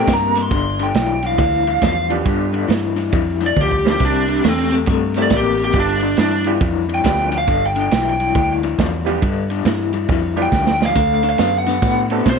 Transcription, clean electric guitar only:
0.08 C3 A#3
0.36 C3 A#3
0.52 G2 D3
0.79 G2 D3
0.95 G2 E3
1.23 G2 E3
1.38 G2 E3
1.68 G2 E3
1.82 G2 F3
2.10 G2 F3
2.26 G2 D3
2.53 G2 D3
2.68 G2 E3
2.96 G2 E3
3.13 G2 E3
3.40 G2 E3
3.56 G2 F3
3.85 G2 F3
4.01 C3 G3
4.29 C3 G3
4.44 C3 A3
4.72 C3 A3
4.89 C3 A3
5.16 C3 A3
5.32 A#3
5.59 C3 A#3
5.76 G2 D3
6.03 G2 D3
6.18 G2 E3
6.46 G2 E3
6.61 G2 E3
6.89 G2 E3
7.04 G2 F3
7.32 G2 F3
7.47 G2 D3
7.75 G2 D3
7.92 G2 E3
8.20 G2 E3
8.35 G2 E3
8.64 G2 E3
8.80 G2 F3
9.08 G2 F3
9.23 G2 D3
9.50 G2 D3
9.66 G2 E3
9.94 G2 E3
10.09 G2 E3
10.36 G2 E3
10.52 G2 F3
10.80 G2 F3
10.95 D3 A3
11.23 D3 A3
11.40 D3 B3
11.67 D3 B3
11.83 D3 B3
12.10 D3 B3
12.26 D3 C4

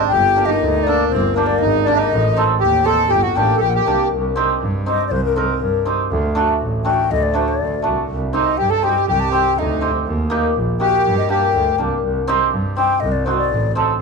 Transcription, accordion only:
Already playing: D4
0.12 G4
0.48 D#4
0.87 D4
1.11 C4
1.35 A#3
1.60 D#4
1.85 D4
1.96 D#4
2.60 G4
2.85 A4
3.09 G4
3.22 F#4
3.36 G4
3.56 G4 A4
3.75 G4
8.34 D#4
8.58 G4
8.70 A4
8.84 G4
8.89 F#4
8.96 G4
9.08 G4
9.57 D#4
10.81 G4
11.30 G4

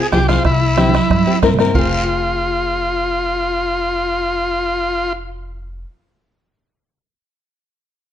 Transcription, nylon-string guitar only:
0.13 C4 F4 G#4
0.29 C4 F4 G#4
0.77 C4 E4 G4
1.27 C4 E4 G4
1.42 C4 E4 A#4
1.59 C4 E4 A#4
1.74 C4 F4
1.78 G#4

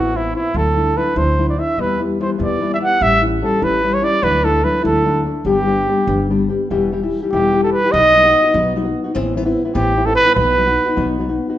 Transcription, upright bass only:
Already playing: A1
0.54 D2
1.16 D2
1.78 E2
2.40 E2
3.01 A1
3.62 A1
4.23 D2
4.85 D2
5.45 G1
6.07 G1
6.71 E1
7.33 E1
7.94 B1
8.54 B1
9.16 A1
9.75 A1
10.36 B1
10.97 B1

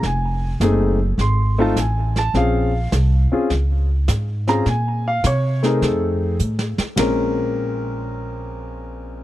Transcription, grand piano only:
0.05 G#5
0.61 A3 C4 D#4 G#4
1.21 C6
1.58 A3 C4 D#4 F4 A5
1.79 G#5
2.19 A5
2.35 C4 C#4 F4 G#4 F5
3.32 C4 C#4 F4 G#4
4.48 C4 C#4 F4 G#4 A#5
4.69 G#5
5.08 F5
5.27 C#5
5.63 A3 C4 D#4 G#4 A#4
5.84 A4
6.96 A#2 G#3 C4 C#4 A#4

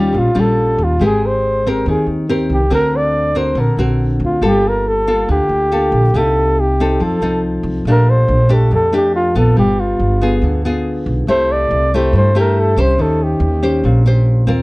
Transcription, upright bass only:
Already playing: D#2
0.14 A#1
0.36 A#1
0.78 D#2
0.99 G#1
1.86 D#2
2.07 D#2
2.50 C2
2.70 D2
3.55 A#1
3.77 A#1
4.20 D2
4.41 G1
5.28 D2
5.49 D2
5.92 A#1
6.14 C2
7.00 F2
7.21 C2
7.63 C2
7.85 A#1
8.28 A#1
8.71 F2
9.35 A#1
9.57 G1
9.99 G1
10.42 D2
11.06 B1
11.27 C2
11.71 C2
12.13 G2
12.77 C2
12.98 D#2
13.40 D#2
13.84 A#1
14.47 D#2

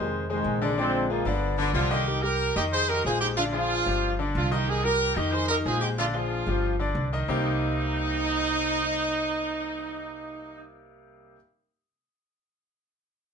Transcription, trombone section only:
Already playing: C3 D#3 G#3
0.29 C3 D#3 G#3
0.78 F3 G#3 C4
1.10 A#3
1.26 D3 F3 B3

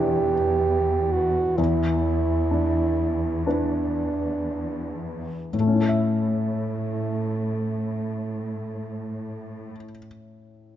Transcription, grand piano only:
Already playing: E2 B2 D4 E4 B4
1.58 E2
2.51 D4
3.47 D4 E4 B4
5.53 A2
5.60 A3
5.67 C#4
5.74 E4
5.81 A4
5.89 E5

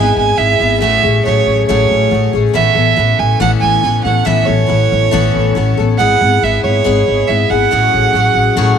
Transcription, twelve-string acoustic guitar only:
Already playing: G#3 B3
0.00 E4 G#4
0.36 G#3 B3 E4 G#4
0.59 B3 E4 G#4
0.81 A2 F#3 A3 C#4 G#4
1.03 A3 C#4 G#4
1.25 F#3 A3 C#4 G#4
1.69 A2 F#3 A3 C#4 G#4
2.11 F#3 A3 C#4 G#4
2.33 A3 C#4 G#4
2.53 A2 E3 B3 C#4 A4
2.75 B3 C#4 A4
2.96 E3 B3 C#4 A4
3.40 A2 E3 B3 C#4 A4
3.83 E3 B3 C#4 A4
4.05 B3 C#4 A4
4.25 A2 E3 B3 C#4 A4
4.46 B3 C#4 A4
4.66 E3 B3 C#4 A4
5.11 A2 E3 B3 C#4 A4
5.55 E3 B3 C#4 A4
5.77 B3 C#4 A4
5.99 G#3 B3 E4 G#4
6.21 B3 E4 G#4
6.43 G#3 B3 E4 G#4
6.84 G#3 B3 E4 G#4
7.27 G#3 B3 E4 G#4
7.50 B3 E4 G#4
7.71 A2 F#3 C#4 F#4 G#4
8.13 F#3 C#4 F#4 G#4
8.57 A2 F#3 C#4 F#4 G#4

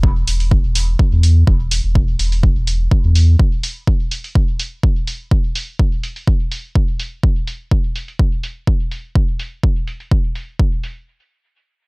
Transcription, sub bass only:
Already playing: E1
0.27 E1
0.64 E1
1.12 E2
1.47 E1
1.84 E1
2.19 E1
2.56 E1
3.04 E2

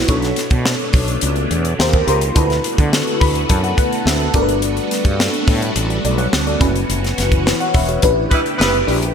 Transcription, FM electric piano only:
Already playing: E4 F#4 B4 C#5
0.08 D4 F#4 A4 C#5
1.79 F4 G4 A#4 C5
2.07 F4 G4 A#4 C5
2.35 E4 F#4 A4 B4
3.20 B5
3.49 A5
3.63 F#5
3.77 F#5
4.07 E5
4.34 D4 F#4 A4 A#4 D5
4.42 B4
6.05 A4 D5
6.18 C#5 F#5
6.47 A4 D5
6.60 C#4 E4 F#4 B4
7.46 F#4 B4
7.60 C#5 F#5
7.74 B4 E5
7.89 F#4 C#5
8.02 D4 E4 G4 B4
8.87 D4 E4 G4 B4

